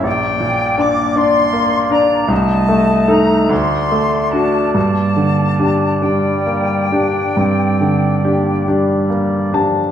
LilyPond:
<<
  \new Staff \with { instrumentName = "Flute section" } { \time 12/8 \key g \minor \tempo 4. = 47 g''4 d'''8 c'''4 bes''8 a''4 bes''8 c'''4 a''8 | a''4. g''2. r4. | }
  \new Staff \with { instrumentName = "Oboe" } { \time 12/8 \key g \minor d''2. ees''4. d''4.~ | d''1~ d''4. r8 | }
  \new Staff \with { instrumentName = "Grand piano" } { \time 12/8 \key g \minor bes,,8 bes,8 <d' d''>8 <d' d''>8 bes8 <d' d''>8 c,8 a8 <ees' a'>8 d,8 a8 <d' fis'>8 | g,8 d8 <d' g'>8 <d' g'>8 bes8 <d' g'>8 g,8 d8 <d' g'>8 <d' g'>8 bes8 <d' g' a''>8 | }
  \new Staff \with { instrumentName = "Clarinet" } { \time 12/8 \key g \minor bes2. a2~ a8 r8 | bes4. g4 d'8 c'4 bes8 g4 f8 | }
>>